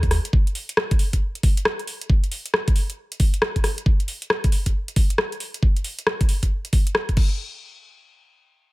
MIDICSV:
0, 0, Header, 1, 3, 480
1, 0, Start_track
1, 0, Tempo, 441176
1, 360, Time_signature, 4, 2, 24, 8
1, 9495, End_track
2, 0, Start_track
2, 0, Title_t, "Analog synth bass"
2, 0, Program_c, 0, 38
2, 0, Note_on_c, 0, 39, 82
2, 212, Note_off_c, 0, 39, 0
2, 9495, End_track
3, 0, Start_track
3, 0, Title_t, "Drums"
3, 33, Note_on_c, 9, 36, 65
3, 33, Note_on_c, 9, 42, 34
3, 119, Note_on_c, 9, 37, 60
3, 119, Note_on_c, 9, 46, 100
3, 141, Note_off_c, 9, 42, 0
3, 142, Note_off_c, 9, 36, 0
3, 228, Note_off_c, 9, 37, 0
3, 228, Note_off_c, 9, 46, 0
3, 272, Note_on_c, 9, 42, 57
3, 361, Note_on_c, 9, 36, 113
3, 381, Note_off_c, 9, 42, 0
3, 469, Note_off_c, 9, 36, 0
3, 513, Note_on_c, 9, 42, 34
3, 600, Note_on_c, 9, 46, 96
3, 622, Note_off_c, 9, 42, 0
3, 709, Note_off_c, 9, 46, 0
3, 752, Note_on_c, 9, 42, 64
3, 839, Note_on_c, 9, 37, 116
3, 861, Note_off_c, 9, 42, 0
3, 948, Note_off_c, 9, 37, 0
3, 992, Note_on_c, 9, 42, 48
3, 993, Note_on_c, 9, 36, 96
3, 1079, Note_on_c, 9, 46, 94
3, 1101, Note_off_c, 9, 42, 0
3, 1102, Note_off_c, 9, 36, 0
3, 1188, Note_off_c, 9, 46, 0
3, 1232, Note_on_c, 9, 42, 59
3, 1233, Note_on_c, 9, 36, 58
3, 1340, Note_off_c, 9, 42, 0
3, 1342, Note_off_c, 9, 36, 0
3, 1472, Note_on_c, 9, 42, 48
3, 1559, Note_on_c, 9, 46, 96
3, 1560, Note_on_c, 9, 36, 96
3, 1581, Note_off_c, 9, 42, 0
3, 1668, Note_off_c, 9, 46, 0
3, 1669, Note_off_c, 9, 36, 0
3, 1712, Note_on_c, 9, 42, 61
3, 1799, Note_on_c, 9, 37, 122
3, 1821, Note_off_c, 9, 42, 0
3, 1908, Note_off_c, 9, 37, 0
3, 1952, Note_on_c, 9, 42, 35
3, 2039, Note_on_c, 9, 46, 101
3, 2061, Note_off_c, 9, 42, 0
3, 2148, Note_off_c, 9, 46, 0
3, 2192, Note_on_c, 9, 42, 61
3, 2280, Note_on_c, 9, 36, 105
3, 2301, Note_off_c, 9, 42, 0
3, 2389, Note_off_c, 9, 36, 0
3, 2433, Note_on_c, 9, 42, 35
3, 2519, Note_on_c, 9, 46, 104
3, 2542, Note_off_c, 9, 42, 0
3, 2628, Note_off_c, 9, 46, 0
3, 2672, Note_on_c, 9, 42, 63
3, 2760, Note_on_c, 9, 37, 109
3, 2781, Note_off_c, 9, 42, 0
3, 2869, Note_off_c, 9, 37, 0
3, 2912, Note_on_c, 9, 36, 94
3, 2912, Note_on_c, 9, 42, 51
3, 2999, Note_on_c, 9, 46, 93
3, 3021, Note_off_c, 9, 36, 0
3, 3021, Note_off_c, 9, 42, 0
3, 3108, Note_off_c, 9, 46, 0
3, 3152, Note_on_c, 9, 42, 63
3, 3261, Note_off_c, 9, 42, 0
3, 3392, Note_on_c, 9, 42, 52
3, 3479, Note_on_c, 9, 46, 98
3, 3480, Note_on_c, 9, 36, 93
3, 3501, Note_off_c, 9, 42, 0
3, 3587, Note_off_c, 9, 46, 0
3, 3589, Note_off_c, 9, 36, 0
3, 3631, Note_on_c, 9, 42, 65
3, 3719, Note_on_c, 9, 37, 118
3, 3740, Note_off_c, 9, 42, 0
3, 3827, Note_off_c, 9, 37, 0
3, 3872, Note_on_c, 9, 42, 35
3, 3873, Note_on_c, 9, 36, 60
3, 3959, Note_on_c, 9, 37, 58
3, 3959, Note_on_c, 9, 46, 97
3, 3981, Note_off_c, 9, 36, 0
3, 3981, Note_off_c, 9, 42, 0
3, 4068, Note_off_c, 9, 37, 0
3, 4068, Note_off_c, 9, 46, 0
3, 4112, Note_on_c, 9, 42, 63
3, 4201, Note_on_c, 9, 36, 106
3, 4221, Note_off_c, 9, 42, 0
3, 4309, Note_off_c, 9, 36, 0
3, 4352, Note_on_c, 9, 42, 37
3, 4439, Note_on_c, 9, 46, 99
3, 4461, Note_off_c, 9, 42, 0
3, 4548, Note_off_c, 9, 46, 0
3, 4591, Note_on_c, 9, 42, 66
3, 4679, Note_on_c, 9, 37, 105
3, 4700, Note_off_c, 9, 42, 0
3, 4788, Note_off_c, 9, 37, 0
3, 4831, Note_on_c, 9, 42, 51
3, 4833, Note_on_c, 9, 36, 88
3, 4920, Note_on_c, 9, 46, 100
3, 4940, Note_off_c, 9, 42, 0
3, 4942, Note_off_c, 9, 36, 0
3, 5029, Note_off_c, 9, 46, 0
3, 5072, Note_on_c, 9, 42, 62
3, 5073, Note_on_c, 9, 36, 55
3, 5180, Note_off_c, 9, 42, 0
3, 5182, Note_off_c, 9, 36, 0
3, 5312, Note_on_c, 9, 42, 50
3, 5399, Note_on_c, 9, 46, 108
3, 5401, Note_on_c, 9, 36, 93
3, 5421, Note_off_c, 9, 42, 0
3, 5508, Note_off_c, 9, 46, 0
3, 5510, Note_off_c, 9, 36, 0
3, 5552, Note_on_c, 9, 42, 63
3, 5639, Note_on_c, 9, 37, 109
3, 5661, Note_off_c, 9, 42, 0
3, 5747, Note_off_c, 9, 37, 0
3, 5792, Note_on_c, 9, 42, 35
3, 5878, Note_on_c, 9, 46, 102
3, 5901, Note_off_c, 9, 42, 0
3, 5987, Note_off_c, 9, 46, 0
3, 6031, Note_on_c, 9, 42, 59
3, 6121, Note_on_c, 9, 36, 110
3, 6140, Note_off_c, 9, 42, 0
3, 6230, Note_off_c, 9, 36, 0
3, 6272, Note_on_c, 9, 42, 36
3, 6359, Note_on_c, 9, 46, 104
3, 6381, Note_off_c, 9, 42, 0
3, 6467, Note_off_c, 9, 46, 0
3, 6512, Note_on_c, 9, 42, 63
3, 6600, Note_on_c, 9, 37, 105
3, 6621, Note_off_c, 9, 42, 0
3, 6709, Note_off_c, 9, 37, 0
3, 6753, Note_on_c, 9, 36, 93
3, 6753, Note_on_c, 9, 42, 50
3, 6840, Note_on_c, 9, 46, 104
3, 6862, Note_off_c, 9, 36, 0
3, 6862, Note_off_c, 9, 42, 0
3, 6949, Note_off_c, 9, 46, 0
3, 6993, Note_on_c, 9, 36, 56
3, 6993, Note_on_c, 9, 42, 60
3, 7102, Note_off_c, 9, 36, 0
3, 7102, Note_off_c, 9, 42, 0
3, 7233, Note_on_c, 9, 42, 51
3, 7319, Note_on_c, 9, 46, 106
3, 7321, Note_on_c, 9, 36, 91
3, 7342, Note_off_c, 9, 42, 0
3, 7428, Note_off_c, 9, 46, 0
3, 7430, Note_off_c, 9, 36, 0
3, 7472, Note_on_c, 9, 42, 63
3, 7559, Note_on_c, 9, 37, 109
3, 7581, Note_off_c, 9, 42, 0
3, 7668, Note_off_c, 9, 37, 0
3, 7712, Note_on_c, 9, 42, 36
3, 7713, Note_on_c, 9, 36, 55
3, 7799, Note_on_c, 9, 49, 81
3, 7800, Note_off_c, 9, 36, 0
3, 7800, Note_on_c, 9, 36, 107
3, 7821, Note_off_c, 9, 42, 0
3, 7908, Note_off_c, 9, 49, 0
3, 7909, Note_off_c, 9, 36, 0
3, 9495, End_track
0, 0, End_of_file